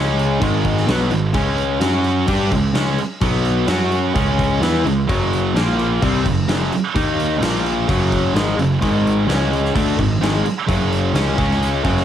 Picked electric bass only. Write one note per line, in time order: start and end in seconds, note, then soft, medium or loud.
0.00 0.38 C#2 loud
0.42 0.85 G#1 medium
0.87 1.09 B1 medium
1.10 1.33 G#1 medium
1.34 1.78 C#2 medium
1.80 2.24 F#2 loud
2.28 2.50 G2 medium
2.52 2.73 C#2 medium
2.74 2.96 C#2 loud
3.22 3.65 B1 medium
3.68 4.12 F#2 medium
4.15 4.59 C#2 medium
4.61 4.83 E2 loud
4.84 5.06 C#2 medium
5.09 5.52 F#1 medium
5.54 5.98 A#1 medium
6.03 6.24 C2 medium
6.26 6.47 F#1 medium
6.47 6.70 F#1 loud
6.95 7.39 D#2 medium
7.41 7.85 A#1 medium
7.89 8.32 F#1 medium
8.34 8.56 G#1 loud
8.57 8.79 F#1 medium
8.82 9.25 G#1 loud
9.27 9.71 C#2 medium
9.75 9.97 D2 medium
9.98 10.19 G#1 medium
10.20 10.42 G#1 loud
10.69 11.12 F#1 medium
11.14 11.36 C#2 medium
11.38 11.81 C#2 medium
11.85 12.05 F#1 medium